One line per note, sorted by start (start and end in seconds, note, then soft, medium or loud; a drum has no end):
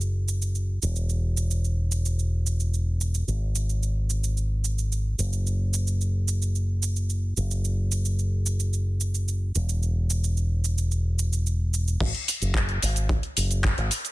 0.00 0.79 F#1 medium
0.00 shaker soft
0.28 shaker medium
0.42 shaker soft
0.55 shaker soft
0.82 3.25 E1 medium
0.82 shaker medium
0.96 shaker soft
1.09 shaker soft
1.37 shaker medium
1.51 shaker soft
1.64 shaker soft
1.92 shaker medium
2.05 shaker soft
2.19 shaker soft
2.46 shaker medium
2.60 shaker soft
2.74 shaker soft
3.01 shaker medium
3.14 shaker soft
3.27 5.16 G#1 medium
3.27 shaker soft
3.55 shaker medium
3.69 shaker soft
3.83 shaker soft
4.10 shaker medium
4.24 shaker soft
4.37 shaker soft
4.64 shaker medium
4.78 shaker soft
4.92 shaker soft
5.18 7.34 F#1 medium
5.18 shaker medium
5.33 shaker soft
5.47 shaker soft
5.73 shaker medium
5.87 shaker soft
6.01 shaker soft
6.28 shaker medium
6.42 shaker soft
6.55 shaker soft
6.83 shaker medium
6.96 shaker soft
7.10 shaker soft
7.37 9.52 F#1 medium
7.37 shaker medium
7.51 shaker soft
7.65 shaker soft
7.92 shaker medium
8.05 shaker soft
8.19 shaker soft
8.46 shaker medium
8.60 shaker soft
8.73 shaker soft
9.01 shaker medium
9.14 shaker soft
9.28 shaker soft
9.55 11.98 E1 medium
9.55 shaker medium
9.69 shaker soft
9.83 shaker soft
10.10 shaker medium
10.24 shaker soft
10.37 shaker soft
10.64 shaker medium
10.78 shaker soft
10.91 shaker soft
11.19 shaker medium
11.33 shaker soft
11.47 shaker soft
11.74 shaker medium
11.88 shaker soft
12.00 12.11 G#1 medium
12.00 kick loud
12.00 closed hi-hat medium
12.00 crash loud
12.00 shaker soft
12.15 closed hi-hat soft
12.28 open hi-hat loud
12.28 shaker medium
12.42 12.78 F#1 medium
12.42 closed hi-hat soft
12.42 shaker soft
12.54 kick loud
12.54 clap loud
12.54 closed hi-hat medium
12.54 shaker soft
12.69 closed hi-hat soft
12.82 13.19 G#1 medium
12.82 open hi-hat loud
12.82 shaker medium
12.96 closed hi-hat soft
12.96 shaker soft
13.09 kick loud
13.09 closed hi-hat medium
13.09 shaker soft
13.23 closed hi-hat soft
13.37 13.73 F#1 medium
13.37 open hi-hat loud
13.37 shaker medium
13.51 closed hi-hat soft
13.51 shaker soft
13.64 kick loud
13.64 clap loud
13.64 closed hi-hat medium
13.64 shaker soft
13.78 13.89 G#1 loud
13.78 closed hi-hat soft
13.91 open hi-hat loud
13.91 shaker medium
14.05 closed hi-hat soft
14.05 shaker soft